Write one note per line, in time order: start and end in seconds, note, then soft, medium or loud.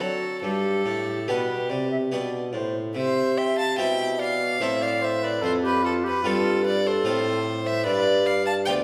0.00 0.39 F#3 soft
0.00 0.45 F#3 medium
0.00 0.39 C4 soft
0.00 0.39 F#4 soft
0.00 0.45 F#4 medium
0.00 0.39 A4 soft
0.00 0.42 A4 medium
0.43 0.85 G2 medium
0.43 0.82 G2 soft
0.43 1.20 G4 soft
0.43 1.30 A4 medium
0.86 1.27 A2 soft
0.86 1.24 A2 soft
1.28 1.66 B2 soft
1.28 1.72 B2 soft
1.28 1.58 B3 soft
1.28 1.58 D4 soft
1.28 2.12 G4 medium
1.28 1.89 G4 soft
1.28 1.71 B4 medium
1.70 2.08 C3 soft
1.70 2.13 C3 soft
1.70 1.91 D5 medium
1.91 1.97 E5 medium
2.11 2.50 B2 soft
2.11 2.55 B2 soft
2.11 2.42 B3 soft
2.11 2.42 D4 soft
2.11 2.72 G4 soft
2.11 2.53 D5 medium
2.53 2.91 A2 soft
2.53 2.95 A2 soft
2.53 2.77 C5 soft
2.95 3.74 C3 soft
2.95 3.74 C3 medium
2.95 3.39 C5 medium
2.95 3.39 E5 medium
3.38 3.59 E5 medium
3.38 3.58 G5 medium
3.58 3.79 F5 medium
3.58 3.78 A5 medium
3.78 4.59 B2 medium
3.78 4.57 B2 soft
3.78 4.38 C4 soft
3.78 4.38 E4 soft
3.78 4.38 G4 soft
3.78 4.20 E5 medium
3.78 4.19 G5 medium
4.19 4.59 D5 medium
4.19 4.63 F5 medium
4.60 5.41 A2 medium
4.60 5.39 A2 soft
4.60 5.39 C4 soft
4.60 5.39 E4 soft
4.60 5.40 A4 soft
4.60 4.83 C5 medium
4.60 4.84 E5 medium
4.82 5.03 D5 medium
4.82 5.05 F5 medium
5.02 5.24 C5 medium
5.02 5.26 E5 medium
5.23 5.43 B4 medium
5.23 5.44 D5 medium
5.42 6.06 F2 medium
5.42 6.20 F2 medium
5.42 5.62 A4 medium
5.42 5.52 C5 medium
5.62 5.84 G4 medium
5.62 5.85 B4 medium
5.83 6.05 F4 medium
5.83 5.93 A4 medium
6.04 6.24 G4 medium
6.04 6.28 B4 medium
6.22 7.03 G2 medium
6.22 7.01 G2 medium
6.22 6.83 C4 soft
6.22 6.64 F4 medium
6.22 6.83 F4 soft
6.22 6.83 A4 soft
6.22 6.66 A4 medium
6.63 6.84 B4 medium
6.67 6.88 D5 medium
6.84 7.41 A4 medium
6.84 7.68 C5 medium
7.04 7.84 A2 medium
7.04 7.82 A2 medium
7.04 7.63 C4 soft
7.04 7.64 F4 soft
7.04 7.64 A4 soft
7.63 7.86 C5 medium
7.63 7.86 E5 medium
7.84 8.63 G2 medium
7.84 8.66 G2 medium
7.84 8.28 B4 medium
7.84 8.28 D5 medium
8.26 8.45 D5 medium
8.26 8.46 F5 medium
8.46 8.52 F5 medium
8.46 8.54 A5 medium
8.66 8.84 D2 medium
8.66 8.84 B3 soft
8.66 8.84 F4 soft
8.66 8.84 G4 soft
8.66 8.84 D5 medium
8.66 8.74 G5 medium